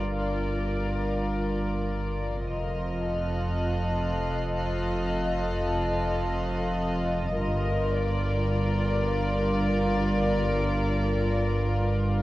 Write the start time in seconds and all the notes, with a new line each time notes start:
Already playing: G1 G2 F4 A#4 D5 A#5 D6 F6
2.47 F1 F2 F4 D#5 F6
3.10 A4 F#6
3.71 C7
7.38 G1 G2 F4 A#4
7.99 D5